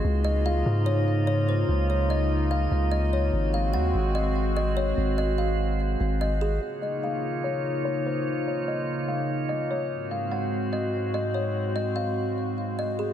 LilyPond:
<<
  \new Staff \with { instrumentName = "Kalimba" } { \time 4/4 \key des \major \tempo 4 = 146 r8 ees''8 f''4 des''4 des''8 c''8 | r8 des''8 ees''4 f''4 ees''8 des''8 | r8 f''8 ges''4 ees''4 ees''8 des''8 | r8 ees''8 f''4 r4 ees''8 aes'8 |
r8 ees''8 f''4 des''4 des''8 c''8 | r8 des''8 ees''4 f''4 ees''8 des''8 | r8 f''8 ges''4 ees''4 ees''8 des''8 | r8 ees''8 f''4 r4 ees''8 aes'8 | }
  \new Staff \with { instrumentName = "Synth texture" } { \time 4/4 \key des \major <bes f' ees''>1~ | <bes f' ees''>1 | <aes ges' c''>1~ | <aes ges' c''>1 |
<bes ees' f' des''>1~ | <bes ees' f' des''>1 | <aes ges' c''>1~ | <aes ges' c''>1 | }
  \new Staff \with { instrumentName = "Analog synth pad" } { \time 4/4 \key des \major <des bes ees' f'>1~ | <des bes ees' f'>1 | <aes c' ges'>1~ | <aes c' ges'>1 |
<des bes ees' f'>1~ | <des bes ees' f'>1 | <aes, aes c' ges'>1~ | <aes, aes c' ges'>1 | }
  \new Staff \with { instrumentName = "808-style bass" } { \clef bass \time 4/4 \key des \major des,4. aes,2~ aes,8 | des,2~ des,8 des,4. | aes,,4 ees,8 aes,,2~ aes,,8 | aes,,2~ aes,,8 aes,,4. |
r1 | r1 | r1 | r1 | }
>>